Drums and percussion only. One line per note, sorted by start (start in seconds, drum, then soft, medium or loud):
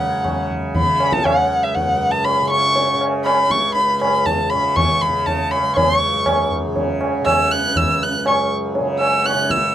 0.25 tabla na medium
0.25 tabla ge medium
0.50 tabla ge medium
0.75 tabla tin medium
0.75 tabla ge medium
1.00 tabla na medium
1.12 tabla ke medium
1.25 tabla na medium
1.25 tabla ge medium
1.76 tabla tin medium
1.76 tabla ge medium
2.25 tabla na medium
2.50 tabla na medium
2.76 tabla tin medium
3.01 tabla na medium
3.26 tabla na medium
3.50 tabla ke medium
3.75 tabla tin medium
4.01 tabla na medium
4.26 tabla tin medium
4.26 tabla ge medium
4.51 tabla na medium
4.77 tabla na medium
4.77 tabla ge medium
5.02 tabla ge soft
5.27 tabla tin medium
5.27 tabla ge medium
5.52 tabla na medium
5.77 tabla tin loud
5.77 tabla ge medium
6.26 tabla na medium
6.26 tabla ge medium
6.51 tabla ge medium
6.76 tabla tin medium
6.76 tabla ge medium
7.01 tabla na medium
7.26 tabla na medium
7.26 tabla ge medium
7.76 tabla tin medium
7.76 tabla ge medium
8.26 tabla na medium
8.75 tabla tin medium
9.01 tabla na medium
9.25 tabla na medium
9.50 tabla ke medium